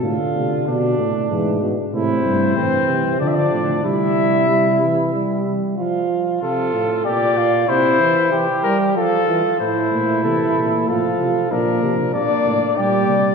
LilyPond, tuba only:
\new Staff \with { instrumentName = "Tuba" } { \clef bass \time 3/4 \key d \minor \tempo 4 = 94 a,8 c8 b,8 a,8 gis,8 r8 | \key f \major a,8 g,8 a,8 c8 d8 a,8 | c2~ c8 r8 | r2. |
r2. | a,8 bes,8 c8 bes,8 a,8 c8 | bes,8 c8 bes,8 a,8 bes,8 c8 | }